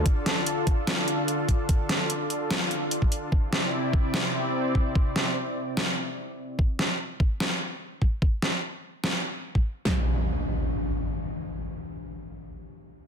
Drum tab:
HH |x-x-x-x-x-x-x-x-|x-x-x-x-x-x-x-x-|----------------|----------------|
SD |--o-----o-------|--o-----o-------|--o-----o-------|--o-----o-------|
BD |o-----o-------o-|o------------o--|o-----o-------o-|o---------------|

HH |----------------|----------------|----------------|----------------|
SD |--o-----o-------|--o-----o-------|o---------------|----------------|
BD |o-----o-------o-|o------------o--|----------------|----------------|